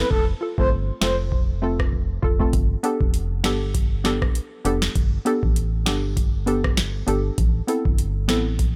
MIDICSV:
0, 0, Header, 1, 5, 480
1, 0, Start_track
1, 0, Tempo, 606061
1, 86, Time_signature, 4, 2, 24, 8
1, 6936, End_track
2, 0, Start_track
2, 0, Title_t, "Soft synth lead"
2, 0, Program_c, 0, 80
2, 81, Note_on_c, 0, 69, 111
2, 197, Note_off_c, 0, 69, 0
2, 461, Note_on_c, 0, 72, 88
2, 550, Note_off_c, 0, 72, 0
2, 806, Note_on_c, 0, 72, 78
2, 919, Note_off_c, 0, 72, 0
2, 6936, End_track
3, 0, Start_track
3, 0, Title_t, "Synth pluck"
3, 0, Program_c, 1, 84
3, 323, Note_on_c, 1, 65, 73
3, 337, Note_on_c, 1, 69, 84
3, 378, Note_off_c, 1, 65, 0
3, 385, Note_off_c, 1, 69, 0
3, 459, Note_on_c, 1, 57, 67
3, 463, Note_on_c, 1, 60, 62
3, 467, Note_on_c, 1, 65, 64
3, 472, Note_on_c, 1, 69, 76
3, 544, Note_off_c, 1, 57, 0
3, 546, Note_off_c, 1, 60, 0
3, 548, Note_off_c, 1, 65, 0
3, 551, Note_off_c, 1, 69, 0
3, 801, Note_on_c, 1, 57, 77
3, 805, Note_on_c, 1, 60, 73
3, 810, Note_on_c, 1, 65, 68
3, 814, Note_on_c, 1, 69, 84
3, 911, Note_off_c, 1, 57, 0
3, 913, Note_off_c, 1, 60, 0
3, 915, Note_off_c, 1, 65, 0
3, 918, Note_off_c, 1, 69, 0
3, 1281, Note_on_c, 1, 57, 93
3, 1286, Note_on_c, 1, 60, 87
3, 1289, Note_on_c, 1, 65, 88
3, 1295, Note_on_c, 1, 69, 105
3, 1391, Note_off_c, 1, 57, 0
3, 1393, Note_off_c, 1, 60, 0
3, 1395, Note_off_c, 1, 65, 0
3, 1398, Note_off_c, 1, 69, 0
3, 1762, Note_on_c, 1, 65, 87
3, 1776, Note_on_c, 1, 69, 100
3, 1818, Note_off_c, 1, 65, 0
3, 1825, Note_off_c, 1, 69, 0
3, 1896, Note_on_c, 1, 57, 86
3, 1899, Note_on_c, 1, 60, 79
3, 1904, Note_on_c, 1, 65, 77
3, 1908, Note_on_c, 1, 69, 95
3, 1983, Note_off_c, 1, 57, 0
3, 1984, Note_off_c, 1, 60, 0
3, 1986, Note_off_c, 1, 65, 0
3, 1989, Note_off_c, 1, 69, 0
3, 2244, Note_on_c, 1, 59, 93
3, 2248, Note_on_c, 1, 62, 82
3, 2253, Note_on_c, 1, 67, 82
3, 2258, Note_on_c, 1, 69, 99
3, 2352, Note_off_c, 1, 59, 0
3, 2355, Note_off_c, 1, 62, 0
3, 2357, Note_off_c, 1, 67, 0
3, 2359, Note_off_c, 1, 69, 0
3, 2722, Note_on_c, 1, 59, 94
3, 2726, Note_on_c, 1, 62, 85
3, 2731, Note_on_c, 1, 67, 87
3, 2736, Note_on_c, 1, 69, 100
3, 2831, Note_off_c, 1, 59, 0
3, 2833, Note_off_c, 1, 62, 0
3, 2836, Note_off_c, 1, 67, 0
3, 2839, Note_off_c, 1, 69, 0
3, 3201, Note_on_c, 1, 59, 91
3, 3205, Note_on_c, 1, 62, 82
3, 3209, Note_on_c, 1, 67, 87
3, 3215, Note_on_c, 1, 69, 104
3, 3311, Note_off_c, 1, 59, 0
3, 3313, Note_off_c, 1, 62, 0
3, 3315, Note_off_c, 1, 67, 0
3, 3318, Note_off_c, 1, 69, 0
3, 3680, Note_on_c, 1, 59, 95
3, 3685, Note_on_c, 1, 62, 85
3, 3688, Note_on_c, 1, 67, 85
3, 3694, Note_on_c, 1, 69, 101
3, 3791, Note_off_c, 1, 59, 0
3, 3793, Note_off_c, 1, 62, 0
3, 3795, Note_off_c, 1, 67, 0
3, 3798, Note_off_c, 1, 69, 0
3, 4159, Note_on_c, 1, 59, 91
3, 4164, Note_on_c, 1, 62, 86
3, 4169, Note_on_c, 1, 67, 82
3, 4172, Note_on_c, 1, 69, 102
3, 4270, Note_off_c, 1, 59, 0
3, 4273, Note_off_c, 1, 62, 0
3, 4275, Note_off_c, 1, 67, 0
3, 4277, Note_off_c, 1, 69, 0
3, 4640, Note_on_c, 1, 59, 90
3, 4643, Note_on_c, 1, 62, 86
3, 4648, Note_on_c, 1, 67, 85
3, 4652, Note_on_c, 1, 69, 97
3, 4750, Note_off_c, 1, 59, 0
3, 4752, Note_off_c, 1, 62, 0
3, 4755, Note_off_c, 1, 67, 0
3, 4757, Note_off_c, 1, 69, 0
3, 5119, Note_on_c, 1, 59, 95
3, 5123, Note_on_c, 1, 62, 87
3, 5127, Note_on_c, 1, 67, 86
3, 5132, Note_on_c, 1, 69, 104
3, 5230, Note_off_c, 1, 59, 0
3, 5232, Note_off_c, 1, 62, 0
3, 5234, Note_off_c, 1, 67, 0
3, 5236, Note_off_c, 1, 69, 0
3, 5597, Note_on_c, 1, 59, 91
3, 5601, Note_on_c, 1, 62, 88
3, 5606, Note_on_c, 1, 67, 88
3, 5610, Note_on_c, 1, 69, 101
3, 5709, Note_off_c, 1, 59, 0
3, 5711, Note_off_c, 1, 62, 0
3, 5714, Note_off_c, 1, 67, 0
3, 5715, Note_off_c, 1, 69, 0
3, 6077, Note_on_c, 1, 59, 94
3, 6082, Note_on_c, 1, 60, 81
3, 6087, Note_on_c, 1, 64, 86
3, 6090, Note_on_c, 1, 69, 100
3, 6189, Note_off_c, 1, 59, 0
3, 6192, Note_off_c, 1, 60, 0
3, 6194, Note_off_c, 1, 64, 0
3, 6196, Note_off_c, 1, 69, 0
3, 6558, Note_on_c, 1, 59, 94
3, 6563, Note_on_c, 1, 60, 87
3, 6568, Note_on_c, 1, 64, 83
3, 6571, Note_on_c, 1, 69, 102
3, 6670, Note_off_c, 1, 59, 0
3, 6672, Note_off_c, 1, 60, 0
3, 6674, Note_off_c, 1, 64, 0
3, 6676, Note_off_c, 1, 69, 0
3, 6936, End_track
4, 0, Start_track
4, 0, Title_t, "FM bass"
4, 0, Program_c, 2, 39
4, 85, Note_on_c, 2, 29, 102
4, 270, Note_off_c, 2, 29, 0
4, 460, Note_on_c, 2, 31, 91
4, 726, Note_off_c, 2, 31, 0
4, 804, Note_on_c, 2, 29, 93
4, 1733, Note_off_c, 2, 29, 0
4, 1766, Note_on_c, 2, 29, 89
4, 1951, Note_off_c, 2, 29, 0
4, 2006, Note_on_c, 2, 31, 106
4, 2191, Note_off_c, 2, 31, 0
4, 2381, Note_on_c, 2, 29, 93
4, 2724, Note_on_c, 2, 31, 85
4, 2736, Note_off_c, 2, 29, 0
4, 3413, Note_off_c, 2, 31, 0
4, 3685, Note_on_c, 2, 29, 86
4, 3870, Note_off_c, 2, 29, 0
4, 3925, Note_on_c, 2, 31, 101
4, 4110, Note_off_c, 2, 31, 0
4, 4300, Note_on_c, 2, 33, 86
4, 4644, Note_on_c, 2, 31, 95
4, 4656, Note_off_c, 2, 33, 0
4, 5574, Note_off_c, 2, 31, 0
4, 5605, Note_on_c, 2, 31, 86
4, 5790, Note_off_c, 2, 31, 0
4, 5845, Note_on_c, 2, 33, 111
4, 6030, Note_off_c, 2, 33, 0
4, 6220, Note_on_c, 2, 31, 93
4, 6566, Note_on_c, 2, 33, 94
4, 6578, Note_off_c, 2, 31, 0
4, 6936, Note_off_c, 2, 33, 0
4, 6936, End_track
5, 0, Start_track
5, 0, Title_t, "Drums"
5, 85, Note_on_c, 9, 36, 100
5, 164, Note_off_c, 9, 36, 0
5, 460, Note_on_c, 9, 36, 96
5, 539, Note_off_c, 9, 36, 0
5, 804, Note_on_c, 9, 38, 108
5, 883, Note_off_c, 9, 38, 0
5, 1044, Note_on_c, 9, 36, 105
5, 1124, Note_off_c, 9, 36, 0
5, 1421, Note_on_c, 9, 36, 91
5, 1423, Note_on_c, 9, 37, 97
5, 1500, Note_off_c, 9, 36, 0
5, 1502, Note_off_c, 9, 37, 0
5, 1526, Note_on_c, 9, 36, 55
5, 1606, Note_off_c, 9, 36, 0
5, 1766, Note_on_c, 9, 36, 88
5, 1846, Note_off_c, 9, 36, 0
5, 1901, Note_on_c, 9, 36, 83
5, 1980, Note_off_c, 9, 36, 0
5, 2006, Note_on_c, 9, 42, 69
5, 2007, Note_on_c, 9, 36, 107
5, 2085, Note_off_c, 9, 42, 0
5, 2086, Note_off_c, 9, 36, 0
5, 2247, Note_on_c, 9, 42, 62
5, 2326, Note_off_c, 9, 42, 0
5, 2381, Note_on_c, 9, 36, 97
5, 2460, Note_off_c, 9, 36, 0
5, 2485, Note_on_c, 9, 42, 74
5, 2564, Note_off_c, 9, 42, 0
5, 2725, Note_on_c, 9, 38, 110
5, 2728, Note_on_c, 9, 42, 59
5, 2804, Note_off_c, 9, 38, 0
5, 2807, Note_off_c, 9, 42, 0
5, 2965, Note_on_c, 9, 36, 96
5, 2966, Note_on_c, 9, 42, 77
5, 3044, Note_off_c, 9, 36, 0
5, 3045, Note_off_c, 9, 42, 0
5, 3206, Note_on_c, 9, 38, 62
5, 3207, Note_on_c, 9, 42, 51
5, 3285, Note_off_c, 9, 38, 0
5, 3286, Note_off_c, 9, 42, 0
5, 3341, Note_on_c, 9, 36, 88
5, 3343, Note_on_c, 9, 37, 93
5, 3420, Note_off_c, 9, 36, 0
5, 3422, Note_off_c, 9, 37, 0
5, 3447, Note_on_c, 9, 42, 68
5, 3526, Note_off_c, 9, 42, 0
5, 3684, Note_on_c, 9, 42, 62
5, 3763, Note_off_c, 9, 42, 0
5, 3817, Note_on_c, 9, 38, 116
5, 3896, Note_off_c, 9, 38, 0
5, 3924, Note_on_c, 9, 42, 69
5, 3925, Note_on_c, 9, 36, 106
5, 4003, Note_off_c, 9, 42, 0
5, 4004, Note_off_c, 9, 36, 0
5, 4165, Note_on_c, 9, 42, 62
5, 4244, Note_off_c, 9, 42, 0
5, 4300, Note_on_c, 9, 36, 97
5, 4380, Note_off_c, 9, 36, 0
5, 4405, Note_on_c, 9, 42, 77
5, 4484, Note_off_c, 9, 42, 0
5, 4644, Note_on_c, 9, 38, 111
5, 4647, Note_on_c, 9, 42, 58
5, 4723, Note_off_c, 9, 38, 0
5, 4726, Note_off_c, 9, 42, 0
5, 4884, Note_on_c, 9, 36, 102
5, 4886, Note_on_c, 9, 42, 79
5, 4963, Note_off_c, 9, 36, 0
5, 4965, Note_off_c, 9, 42, 0
5, 5126, Note_on_c, 9, 42, 52
5, 5205, Note_off_c, 9, 42, 0
5, 5261, Note_on_c, 9, 36, 92
5, 5262, Note_on_c, 9, 37, 98
5, 5340, Note_off_c, 9, 36, 0
5, 5341, Note_off_c, 9, 37, 0
5, 5364, Note_on_c, 9, 38, 111
5, 5365, Note_on_c, 9, 42, 68
5, 5444, Note_off_c, 9, 38, 0
5, 5445, Note_off_c, 9, 42, 0
5, 5605, Note_on_c, 9, 42, 62
5, 5684, Note_off_c, 9, 42, 0
5, 5845, Note_on_c, 9, 42, 71
5, 5846, Note_on_c, 9, 36, 109
5, 5924, Note_off_c, 9, 42, 0
5, 5925, Note_off_c, 9, 36, 0
5, 6086, Note_on_c, 9, 42, 64
5, 6165, Note_off_c, 9, 42, 0
5, 6220, Note_on_c, 9, 36, 100
5, 6299, Note_off_c, 9, 36, 0
5, 6324, Note_on_c, 9, 42, 74
5, 6403, Note_off_c, 9, 42, 0
5, 6563, Note_on_c, 9, 38, 106
5, 6566, Note_on_c, 9, 42, 58
5, 6642, Note_off_c, 9, 38, 0
5, 6645, Note_off_c, 9, 42, 0
5, 6804, Note_on_c, 9, 36, 105
5, 6804, Note_on_c, 9, 42, 78
5, 6883, Note_off_c, 9, 36, 0
5, 6883, Note_off_c, 9, 42, 0
5, 6936, End_track
0, 0, End_of_file